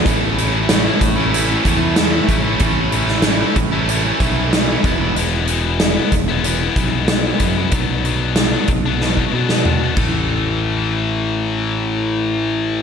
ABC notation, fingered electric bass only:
X:1
M:4/4
L:1/8
Q:1/4=94
K:A
V:1 name="Fingered electric bass" clef=bass
A,,,3 A,,,2 E,,2 A,,, | A,,,3 A,,,2 B,,,2 E,,, | E,,,3 E,,,2 B,,,2 F,, | B,,,3 B,,,2 B,,2 A,,,- |
A,,,8 |]